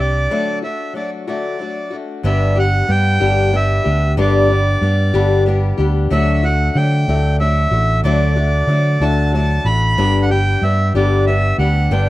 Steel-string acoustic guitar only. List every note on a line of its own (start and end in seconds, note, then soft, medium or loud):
0.00 0.31 C4 soft
0.00 0.30 D4 soft
0.00 0.30 G4 medium
0.30 0.63 D3 medium
0.30 0.63 F#3 medium
0.30 0.63 A3 medium
0.30 0.63 D4 medium
0.30 0.61 F#4 medium
0.62 0.94 A3 soft
0.62 0.94 D4 soft
0.62 0.95 F#4 soft
0.93 1.26 F#3 medium
0.93 1.27 A3 medium
0.93 1.26 D4 medium
0.93 1.26 F#4 medium
1.27 1.61 D3 medium
1.27 1.57 F#3 medium
1.27 1.59 A3 medium
1.27 1.60 D4 medium
1.27 1.60 F#4 medium
1.59 1.91 F#3 medium
1.59 1.92 A3 medium
1.59 1.91 D4 medium
1.59 1.89 F#4 medium
1.91 2.24 A3 soft
1.91 2.24 D4 soft
1.91 2.23 F#4 soft
2.23 2.56 G2 medium
2.23 2.56 D3 medium
2.23 2.57 G3 medium
2.23 2.56 B3 medium
2.23 2.55 D4 medium
2.23 2.54 G4 medium
2.56 2.86 G3 soft
2.56 2.87 B3 soft
2.56 2.88 D4 medium
2.56 2.88 G4 medium
2.87 3.20 G3 medium
2.87 3.20 B3 medium
2.87 3.19 D4 medium
2.87 3.19 G4 medium
3.20 3.54 G2 medium
3.20 3.54 D3 medium
3.20 3.51 G3 medium
3.20 3.52 B3 medium
3.20 3.52 D4 medium
3.20 3.53 G4 medium
3.52 3.85 G3 medium
3.52 3.85 B3 medium
3.52 3.84 D4 medium
3.52 3.83 G4 medium
3.84 4.16 G3 soft
3.84 4.17 B3 medium
3.84 4.17 D4 medium
3.84 4.17 G4 medium
4.17 4.50 G2 medium
4.17 4.50 D3 loud
4.17 4.50 G3 medium
4.17 4.50 B3 loud
4.17 4.49 D4 medium
4.17 4.48 G4 medium
4.49 4.80 G3 soft
4.49 4.81 B3 soft
4.49 4.82 D4 medium
4.49 4.82 G4 medium
4.81 5.14 G3 medium
4.81 5.14 B3 medium
4.81 5.13 D4 medium
4.81 5.12 G4 medium
5.14 5.47 G2 medium
5.14 5.47 D3 medium
5.14 5.45 G3 medium
5.14 5.46 B3 medium
5.14 5.47 D4 medium
5.14 5.46 G4 medium
5.46 5.79 G3 medium
5.46 5.79 B3 medium
5.46 5.78 D4 medium
5.46 5.76 G4 medium
5.78 6.11 G3 medium
5.78 6.12 B3 medium
5.78 6.11 D4 medium
5.78 6.10 G4 medium
6.10 6.43 D3 medium
6.10 6.43 F#3 loud
6.10 6.44 A3 loud
6.10 6.43 D4 medium
6.10 6.42 F#4 loud
6.44 6.76 A3 soft
6.44 6.76 D4 medium
6.44 6.76 F#4 medium
6.75 7.08 F#3 medium
6.75 7.08 A3 medium
6.75 7.08 D4 medium
7.09 7.41 D3 medium
7.09 7.38 F#3 medium
7.09 7.40 A3 medium
7.09 7.40 D4 medium
7.40 7.72 F#3 medium
7.40 7.73 A3 medium
7.40 7.72 D4 medium
7.40 7.70 F#4 medium
7.71 8.04 A3 soft
7.71 8.04 D4 soft
7.71 8.04 F#4 medium
8.04 8.36 D3 medium
8.04 8.37 F#3 medium
8.04 8.37 A3 medium
8.04 8.36 D4 loud
8.04 8.35 F#4 medium
8.36 8.68 A3 soft
8.36 8.69 D4 medium
8.36 8.69 F#4 medium
8.68 9.01 F#3 medium
8.68 9.01 A3 medium
8.68 9.01 D4 medium
8.68 9.00 F#4 medium
9.01 9.34 D3 medium
9.01 9.32 F#3 medium
9.01 9.33 A3 medium
9.01 9.34 D4 medium
9.01 9.34 F#4 medium
9.33 9.65 F#3 medium
9.33 9.66 A3 medium
9.33 9.66 D4 medium
9.33 9.64 F#4 medium
9.66 9.98 A3 soft
9.66 9.98 D4 medium
9.66 9.98 F#4 medium
9.98 10.30 G2 medium
9.98 10.30 D3 loud
9.98 10.30 G3 medium
9.98 10.30 B3 medium
9.98 10.30 D4 loud
9.98 10.29 G4 medium
10.31 10.61 G3 soft
10.31 10.62 B3 soft
10.31 10.63 D4 soft
10.31 10.63 G4 medium
10.62 10.95 G3 medium
10.62 10.95 B3 medium
10.62 10.94 D4 medium
10.62 10.94 G4 medium
10.95 11.28 G2 medium
10.95 11.28 D3 medium
10.95 11.26 G3 medium
10.95 11.27 B3 medium
10.95 11.27 D4 medium
10.95 11.27 G4 medium
11.27 11.59 G3 medium
11.27 11.60 B3 medium
11.27 11.59 D4 medium
11.27 11.58 G4 medium
11.59 11.90 G3 soft
11.59 11.91 B3 medium
11.59 11.92 D4 medium
11.59 11.91 G4 medium
11.91 12.09 G2 medium
11.91 12.09 D3 medium
11.91 12.09 G3 medium
11.91 12.09 B3 medium
11.91 12.09 D4 medium
11.91 12.09 G4 loud